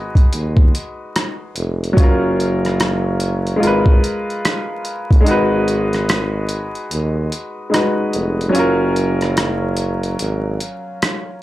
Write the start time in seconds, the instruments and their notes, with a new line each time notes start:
Already playing: tuba G#1, upright piano G#3 D#4 F#4 B4
0.15 kick, closed hi-hat
0.33 tuba D#2, closed hi-hat
0.57 kick
0.75 closed hi-hat
1.16 cross-stick, closed hi-hat
1.56 tuba F1, closed hi-hat
1.84 closed hi-hat
1.93 upright piano F#3 C#4, kick
1.97 tuba F#1, upright piano F4, closed hi-hat
2.03 upright piano A#4
2.40 closed hi-hat
2.65 cross-stick, closed hi-hat
2.80 cross-stick, closed hi-hat
3.20 closed hi-hat
3.47 closed hi-hat
3.56 upright piano G#3 F4
3.62 tuba G#1, upright piano A#4, closed hi-hat
3.67 upright piano B4
3.86 kick
4.04 closed hi-hat
4.30 closed hi-hat
4.45 cross-stick, closed hi-hat
4.85 closed hi-hat
5.11 tuba G1, kick, closed hi-hat
5.21 upright piano G#3 D#4
5.26 tuba G#1, upright piano F#4, closed hi-hat
5.31 upright piano B4
5.68 closed hi-hat
5.93 cross-stick, closed hi-hat
6.09 cross-stick, closed hi-hat
6.49 closed hi-hat
6.75 closed hi-hat
6.91 tuba D#2, closed hi-hat
7.32 closed hi-hat
7.70 upright piano G#3 D#4 F#4, closed hi-hat
7.74 upright piano B4, cross-stick
8.13 tuba F1, closed hi-hat
8.41 closed hi-hat
8.49 upright piano F#3 C#4
8.55 tuba F#1, upright piano F4, closed hi-hat
8.59 upright piano A#4
8.96 closed hi-hat
9.21 cross-stick, closed hi-hat
9.37 cross-stick, closed hi-hat
9.77 closed hi-hat
10.03 closed hi-hat
10.19 tuba G#1, closed hi-hat
10.60 closed hi-hat
11.02 cross-stick, closed hi-hat